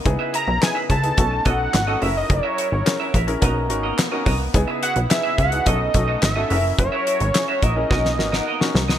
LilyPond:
<<
  \new Staff \with { instrumentName = "Analog synth lead" } { \time 4/4 \key b \major \tempo 4 = 107 r8 ais''8 gis''8 a''4 fis''4 e''16 dis''16 | cis''2 r2 | r8 fis''8 e''8 fis''8 dis''4 e''4 | cis''4. dis''2 r8 | }
  \new Staff \with { instrumentName = "Clean electric guitar" } { \time 4/4 \key b \major r16 <gis' b' e''>16 <gis' b' e''>16 r8 <gis' b' e''>16 <gis' b' e''>16 r8. <fis' a' dis''>16 r8 <fis' a' dis''>16 <fis' ais' e''>16 r16 | r16 <fis' ais' e''>16 <fis' ais' e''>16 r8 <fis' ais' e''>16 <fis' ais' e''>16 r16 <fis' ais' dis''>16 r8 <fis' ais' dis''>16 r16 <fis' ais' dis''>16 <fis' ais' dis''>16 r16 | r16 <gis' b' e''>16 <gis' b' e''>16 r8 <gis' b' e''>16 <gis' b' e''>16 r16 <fis' a' dis''>16 r8 <fis' a' dis''>16 r16 <fis' a' dis''>16 <fis' ais' e''>16 r16 | r16 <fis' ais' e''>16 <fis' ais' e''>16 r8 <fis' ais' e''>16 <fis' ais' e''>16 r16 <fis' ais' dis''>16 r8 <fis' ais' dis''>16 <fis' ais' dis''>16 r8 <fis' ais' dis''>16 | }
  \new Staff \with { instrumentName = "Grand piano" } { \time 4/4 \key b \major <b dis' e' gis'>8 r8 <b dis' e' gis'>16 r8 <b dis' e' gis'>16 <cis' dis' fis' a'>8 <cis' dis' fis' a'>16 r8 <cis' dis' fis' a'>16 <cis' e' gis' ais'>8~ | <cis' e' gis' ais'>8. r16 <cis' e' gis' ais'>16 r8 <cis' e' gis' ais'>16 <cis' dis' fis' ais'>8 <cis' dis' fis' ais'>16 r8 <cis' dis' fis' ais'>16 r8 | <b dis' e' gis'>8 r8 <b dis' e' gis'>16 r8 <b dis' e' gis'>16 <cis' dis' fis' a'>8 <cis' dis' fis' a'>16 r8 <cis' dis' fis' a'>16 <cis' e' gis' ais'>8~ | <cis' e' gis' ais'>8. r16 <cis' e' gis' cis''>16 r8 <cis' e' gis' ais'>16 <cis' dis' fis' ais'>8 <cis' dis' fis' ais'>16 r8 <cis' dis' fis' ais'>16 r8 | }
  \new Staff \with { instrumentName = "Analog synth pad" } { \time 4/4 \key b \major << { <cis e'>2 <a dis'>4. <fis ais'>8~ | <fis ais'>2 <ais dis'>2 | <cis e'>2 <a dis'>4. <fis ais'>8~ | <fis ais'>2 <ais dis'>2 | } \\ { b2 b4. e'8~ | e'2 b2~ | b2.~ b8 e'8~ | e'2 b2 | } >> }
  \new Staff \with { instrumentName = "Analog synth bass" } { \clef bass \time 4/4 \key b \major cis,16 r8 b,,16 r8 cis,8 b,,8 b,,8 gis,,8 fis,,8 | fis,,16 r8 gis,,16 r8 ais,,8 b,,8 gis,,8 r8 bis,,8 | cis,16 r8 b,,16 r8 cis,8 b,,8 b,,8 gis,,8 fis,,8 | fis,,16 r8 gis,,16 r8 ais,,8 b,,8 gis,,8 r8 bis,,8 | }
  \new DrumStaff \with { instrumentName = "Drums" } \drummode { \time 4/4 <hh bd>8 hh8 <hc hh sn>8 <hh bd>16 hh16 <hh bd>8 <hh bd>8 <hc hh sn>8 hho8 | <hh bd>8 hh8 <hc hh sn>8 <hh bd>16 hh16 <hh bd>8 hh8 <hc hh sn>8 <hho bd>8 | <hh bd>8 hh16 hh16 <hc hh sn>8 <hh bd>16 hh16 <hh bd>8 <hh bd>8 <hc hh sn>8 hho8 | <hh bd>8 hh16 hh16 <hc hh sn>8 <hh bd>8 <bd sn>16 sn16 sn16 sn16 r16 sn16 sn16 sn16 | }
>>